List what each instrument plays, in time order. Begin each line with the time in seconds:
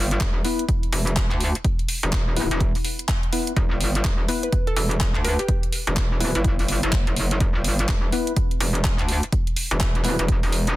Already playing: wobble bass G1
0.11 closed hi-hat
0.20 wobble bass E1, kick, clap, closed hi-hat
0.45 synth stab B3 E4 B4, open hi-hat
0.59 closed hi-hat
0.69 kick, closed hi-hat
0.83 closed hi-hat
0.93 wobble bass E1, open hi-hat
1.07 closed hi-hat
1.16 kick, clap, closed hi-hat
1.31 wobble bass D2, clap, closed hi-hat
1.41 open hi-hat
1.55 closed hi-hat
1.65 kick, closed hi-hat
1.79 closed hi-hat
1.89 open hi-hat
2.03 wobble bass E1, closed hi-hat
2.12 kick, clap, closed hi-hat
2.37 synth stab B3 E4 B4, open hi-hat
2.51 wobble bass E1, closed hi-hat
2.61 kick, closed hi-hat
2.75 open hi-hat
2.85 open hi-hat
2.99 closed hi-hat
3.08 kick, clap, closed hi-hat
3.23 closed hi-hat
3.32 synth stab B3 E4 B4, open hi-hat
3.47 closed hi-hat
3.56 wobble bass E1, kick, closed hi-hat
3.71 wobble bass G1
3.81 open hi-hat
3.95 closed hi-hat
4.04 wobble bass E1, kick, clap, closed hi-hat
4.28 synth stab B3 E4 B4, synth pluck B4, open hi-hat
4.43 synth pluck B4, closed hi-hat
4.53 kick, closed hi-hat
4.67 synth pluck A4, closed hi-hat
4.76 wobble bass E1, synth pluck A4, open hi-hat
4.91 closed hi-hat
5.00 kick, clap, closed hi-hat
5.15 wobble bass D2, clap, closed hi-hat
5.25 synth pluck B4, open hi-hat
5.39 synth pluck G4, closed hi-hat
5.48 kick, closed hi-hat
5.63 closed hi-hat
5.73 open hi-hat
5.87 wobble bass E1, closed hi-hat
5.96 kick, clap, closed hi-hat
6.20 synth stab B3 E4 B4, synth pluck E4, open hi-hat
6.35 wobble bass G1, synth pluck E4, closed hi-hat
6.45 kick, closed hi-hat
6.59 open hi-hat
6.68 open hi-hat
6.83 wobble bass F#1, closed hi-hat
6.92 kick, clap, closed hi-hat
7.07 wobble bass F#1, closed hi-hat
7.16 open hi-hat
7.31 closed hi-hat
7.40 wobble bass E1, kick, closed hi-hat
7.55 wobble bass G1
7.64 open hi-hat
7.79 closed hi-hat
7.88 wobble bass E1, kick, clap, closed hi-hat
8.12 synth stab B3 E4 B4, open hi-hat
8.27 closed hi-hat
8.36 kick, closed hi-hat
8.51 closed hi-hat
8.60 wobble bass E1, open hi-hat
8.75 closed hi-hat
8.84 kick, clap, closed hi-hat
8.99 wobble bass D2, clap, closed hi-hat
9.09 open hi-hat
9.23 closed hi-hat
9.32 kick, closed hi-hat
9.47 closed hi-hat
9.56 open hi-hat
9.71 wobble bass E1, closed hi-hat
9.80 kick, clap, closed hi-hat
9.95 closed hi-hat
10.04 synth stab B3 E4 B4, clap, open hi-hat
10.19 wobble bass E1, closed hi-hat
10.28 kick, closed hi-hat
10.43 wobble bass E1, open hi-hat
10.52 open hi-hat
10.67 closed hi-hat